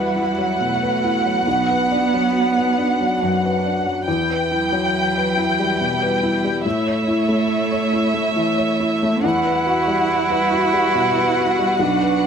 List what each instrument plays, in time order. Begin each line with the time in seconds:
Already playing: felt piano E2 E4 F#4 B4, cello G3, string section E4 F#4 B4, violin section F#5
0.16 felt piano E4
0.38 felt piano F#3
0.59 felt piano B2, cello A3
0.82 felt piano B4
1.04 felt piano E4
1.25 felt piano F#3
1.46 felt piano B1, cello B3, string section D4
1.70 felt piano B4
1.92 felt piano D4
2.14 felt piano F#3
2.57 felt piano B4
2.78 felt piano D4
3.01 felt piano F#3
3.21 felt piano F#2, cello F#3
3.44 felt piano B4
3.65 felt piano D4
3.86 felt piano F#3
4.07 felt piano E2, string section E3 E4 B4, violin section G5
4.30 felt piano B4
4.51 cello F#3, felt piano E4
4.72 felt piano F#3
5.16 felt piano B4
5.37 felt piano E4
5.59 felt piano G3
5.80 felt piano B2, cello G3
6.02 felt piano B4
6.23 felt piano E4
6.44 felt piano G3
6.65 felt piano A2, string section A3 C#5, cello A3, violin section E5
6.87 felt piano C#5
7.08 felt piano E4
7.29 felt piano A3
7.72 felt piano C#5
7.93 felt piano E4
8.14 felt piano A3
8.36 felt piano E3, cello A3
8.58 felt piano C#5
8.80 felt piano E4
9.03 felt piano A3
9.24 felt piano E2, string section G3 F#4 B4, cello E4, violin section F#5
9.46 felt piano B4
9.66 felt piano F#4
9.87 felt piano G3
10.30 felt piano B4
10.52 felt piano F#4
10.73 felt piano G3
10.95 felt piano B2
11.16 felt piano B4
11.38 felt piano F#4
11.59 felt piano G3
11.79 felt piano B1, string section F#3, cello D4
12.01 felt piano B4
12.23 felt piano F#4